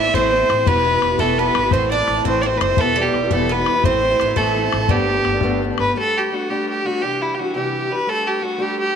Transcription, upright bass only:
0.00 0.11 A1 medium
0.14 0.44 A1 medium
0.50 0.64 A1 loud
0.66 0.97 E1 loud
1.02 1.17 E1 medium
1.19 1.50 E1 medium
1.55 1.70 G1 loud
1.71 2.02 A1 loud
2.08 2.22 A1 medium
2.25 2.56 A1 medium
2.61 2.76 F#1 loud
2.78 3.09 E1 medium
3.14 3.28 E1 medium
3.31 3.61 E1 loud
3.68 3.82 E2 loud
3.85 4.15 A1 loud
4.20 4.34 A1 medium
4.37 4.67 A1 medium
4.73 4.87 A1 loud
4.90 5.20 G1 loud
5.26 5.40 G1 medium
5.43 5.73 G1 medium
5.79 5.93 G1 loud

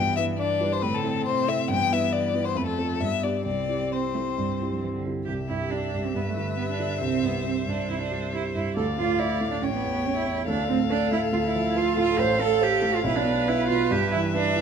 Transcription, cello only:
0.00 0.81 E3 soft
0.84 1.25 D3 soft
1.27 1.71 C3 medium
1.70 2.58 E3 soft
2.57 3.01 F3 soft
3.00 3.45 G3 soft
3.46 3.86 G3 soft
3.90 3.98 C4 medium
4.13 4.21 A3 soft
4.37 4.72 G3 soft
4.70 4.80 F3 soft
4.81 4.86 E3 soft
4.92 5.24 D3 soft
5.25 5.33 G4 medium
5.48 5.72 E4 medium
5.70 6.06 D4 medium
6.05 6.15 C4 medium
6.15 6.20 B3 medium
6.26 6.57 A3 soft
6.57 6.69 B3 medium
6.70 7.02 D4 medium
7.04 7.26 C4 medium
7.25 7.46 B3 medium
7.47 7.55 C4 medium
7.68 7.90 D4 medium
7.90 7.99 E4 medium
7.99 8.32 D4 medium
8.34 8.42 E4 medium
8.55 8.76 E4 medium
8.77 8.85 A4 medium
8.98 9.20 F4 medium
9.18 9.50 E4 medium
9.50 9.60 D4 medium
9.61 9.66 C#4 medium
9.72 10.07 B3 medium
10.06 10.15 C#4 medium
10.16 10.47 E4 medium
10.49 10.68 D4 medium
10.69 10.77 C4 medium
10.89 11.11 D4 medium
11.12 11.20 E4 medium
11.33 11.37 F4 medium
11.44 11.78 E4 medium
11.77 11.98 F4 medium
11.98 12.20 F4 medium
12.19 12.42 C5 medium
12.40 12.64 A4 medium
12.63 12.96 G4 medium
12.95 13.04 F4 medium
13.05 13.17 E4 medium
13.15 13.49 D4 medium
13.48 13.67 E4 medium
13.68 13.93 F4 medium
13.91 14.11 G4 medium
14.12 14.20 E4 medium
14.35 14.61 D4 medium

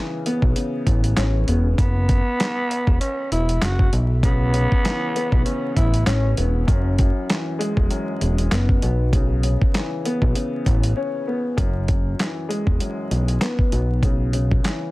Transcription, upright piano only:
0.00 0.55 C#3 medium
0.00 1.48 E3 medium
0.00 0.25 B3 medium
0.26 1.46 B3 loud
0.55 1.78 C#3 medium
1.17 1.78 C#4 medium
1.48 1.78 B3 medium
4.25 4.52 C#3 medium
4.53 5.43 C#3 medium
4.84 6.37 E3 medium
5.16 6.36 B3 loud
5.45 6.68 C#3 medium
6.07 6.68 C#4 loud
6.38 6.68 B3 medium
6.67 6.98 F#2 medium
6.99 7.89 F#2 medium
7.30 8.83 E3 medium
7.59 8.82 G#3 loud
7.91 8.82 F#2 medium
8.52 8.82 B3 loud
8.83 10.04 B3 medium
9.14 9.42 C#3 medium
9.43 10.33 C#3 medium
9.74 11.27 E3 medium
10.06 11.26 B3 loud
10.34 11.57 C#3 medium
10.97 11.58 C#4 loud
11.28 11.58 B3 medium
11.57 11.87 F#2 medium
11.89 12.79 F#2 medium
12.20 13.72 E3 medium
12.49 13.72 G#3 medium
12.80 13.72 F#2 medium
13.42 13.71 B3 medium
13.73 14.91 B3 medium
14.04 14.31 C#3 medium
14.33 14.91 C#3 medium
14.64 14.91 E3 medium

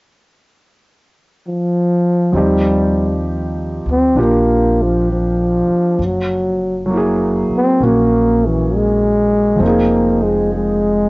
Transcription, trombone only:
1.48 2.38 F3 medium
2.36 3.27 G3 medium
3.91 4.23 C4 medium
4.21 4.84 A#3 medium
4.82 5.10 F3 medium
5.12 6.07 F3 medium
6.05 6.93 F#3 medium
7.57 7.86 C4 medium
7.84 8.47 A#3 medium
8.46 8.77 E3 medium
8.75 9.65 G#3 medium
9.64 10.25 A#3 medium
10.24 10.52 G#3 medium
10.55 11.09 G#3 medium

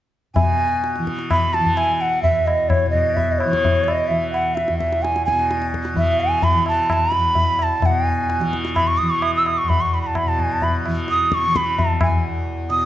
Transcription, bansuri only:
0.35 1.02 G#5 medium
1.31 1.55 B5 medium
1.54 1.79 A5 medium
1.78 2.03 G#5 medium
2.01 2.22 F#5 medium
2.23 2.48 E5 medium
2.46 2.71 D#5 medium
2.69 2.90 C#5 medium
2.90 3.16 D#5 medium
3.15 3.33 E5 medium
3.32 3.40 D#5 medium
3.38 3.85 C#5 medium
3.84 4.09 D#5 medium
4.08 4.32 E5 medium
4.33 4.57 F#5 medium
4.55 4.77 E5 medium
4.78 5.04 E5 medium
5.02 5.25 G#5 medium
5.25 5.70 G#5 medium
5.97 6.22 E5 medium
6.20 6.45 G#5 medium
6.43 6.67 B5 medium
6.68 6.93 A5 medium
6.93 7.14 A5 medium
7.14 7.64 B5 medium
7.63 7.87 A5 medium
7.85 8.05 F#5 medium
8.05 8.54 G#5 medium
8.76 8.89 B5 medium
8.87 8.99 C#6 medium
8.98 9.12 D#6 medium
9.10 9.24 C#6 medium
9.22 9.34 D#6 medium
9.35 9.48 E6 medium
9.46 9.59 D#6 medium
9.58 9.70 C#6 medium
9.69 9.82 B5 medium
9.81 9.95 C#6 medium
9.94 10.01 B5 medium
10.02 10.08 B5 soft
10.07 10.19 A5 medium
10.18 10.30 B5 medium
10.28 10.41 A5 medium
10.40 10.54 G#5 medium
10.52 10.65 A5 medium
10.63 10.75 B5 medium
11.11 11.36 D#6 loud
11.34 11.58 C#6 medium
11.56 11.81 B5 medium
11.79 12.02 A5 medium
12.03 12.24 G#5 medium
12.71 12.85 D#6 medium

